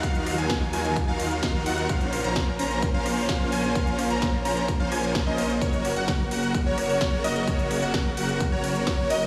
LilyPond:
<<
  \new Staff \with { instrumentName = "Digital synth lead" } { \time 4/4 \key bes \minor \tempo 4 = 129 f''8. aes''8 r16 aes''8 r16 f''8. f''8 ges''8 | f''8. bes''8 r16 bes''8 r16 f''8. f''8 aes''8 | f''8. bes''8 r16 bes''8 r16 f''16 aes''8. ees''8 r16 | des''8. ges''8 r16 ges''8 r16 des''8. des''8 ees''8 |
des''8. ges''8 r16 ges''8 r16 des''8. des''8 ees''8 | }
  \new Staff \with { instrumentName = "Supersaw synth" } { \time 4/4 \key bes \minor <ees' f' ges' bes' f''>8. <ees' f' ges' bes' aes''>8 r16 <ees' f' ges' bes' aes''>8 r16 <ees' f' ges' bes' f''>8. <ees' f' ges' bes' f''>8 <ees' f' ges' bes' ges''>8 | <des' f' bes' c'' f''>8. <des' f' bes' c'' bes''>8 r16 <des' f' bes' c'' bes''>8 r16 <des' f' bes' c'' f''>8. <des' f' bes' c'' f''>8 <des' f' bes' c'' aes''>8 | <des' f' bes' c'' f''>8. <des' f' bes' c'' bes''>8 r16 <des' f' bes' c'' bes''>8 r16 <des' f' bes' c'' f''>16 <des' f' bes' c'' aes''>8. <des' f' bes' c'' ees''>8 r16 | <ges' bes' des''>8. <ges' bes' ges''>8 r16 <ges' bes' ges''>8 r16 <ges' bes' des''>8. <ges' bes' des''>8 <ges' bes' ees''>8 |
<ges' bes' des''>8. <ges' bes' ges''>8 r16 <ges' bes' ges''>8 r16 <ges' bes' des''>8. <ges' bes' des''>8 <ges' bes' ees''>8 | }
  \new Staff \with { instrumentName = "String section" } { \time 4/4 \key bes \minor << { <ees f''>1 | des'1~ | des'1 | <des ges'>1~ |
<des ges'>1 | } \\ { ges1 | bes1~ | bes1~ | bes1~ |
bes1 | } >> }
  \new Staff \with { instrumentName = "Detuned saw bass" } { \clef bass \time 4/4 \key bes \minor ees,8. ees,8. ees,8. ees,8. ees,8 ees,8 | bes,,8. bes,,8. bes,,8. bes,,8. bes,,8 bes,,8 | bes,,8. bes,,8. bes,,8. bes,,16 bes,,8. bes,,8. | ges,,8. ges,,8. ges,,8. ges,,8. ges,,8 ges,,8 |
ges,,8. ges,,8. ges,,8. ges,,8. ges,,8 ges,,8 | }
  \new DrumStaff \with { instrumentName = "Drums" } \drummode { \time 4/4 <hh bd cymr>16 hh16 <hho cymr ss>16 hh16 <hh bd cymr sn>8 <hho cymr>16 hh16 <hh bd cymr>8 <hho cymr>16 hh16 <hh bd cymr sn>8 <hho cymr>16 hh16 | <hh bd cymr>16 hh16 <hho cymr ss>16 hh16 <hh bd cymr sn>8 <hho cymr>16 hh16 <hh bd cymr>8 <hho cymr ss>16 hho16 <hh bd cymr sn>8 <hho cymr>16 hh16 | <hh bd cymr>16 hh16 <hho cymr ss>16 hh16 <hh bd cymr sn>8 <hho cymr>16 hh16 <hh bd cymr>8 <hho cymr ss>16 hh16 <hh bd cymr sn>8 <hho cymr>16 hh16 | <hh bd cymr>16 hh16 <hho cymr ss>16 hh16 <hh bd cymr sn>8 <hho cymr>16 hh16 <hh bd cymr>8 <hho cymr ss>16 hho16 <hh bd cymr sn>8 <hho cymr>16 hh16 |
<hh bd cymr>16 hh16 <hho cymr ss>16 hh16 <hh bd cymr sn>8 <hho cymr>16 hh16 <hh bd cymr>8 <hho cymr>16 hh16 <hh bd cymr sn>8 <hho cymr>16 hh16 | }
>>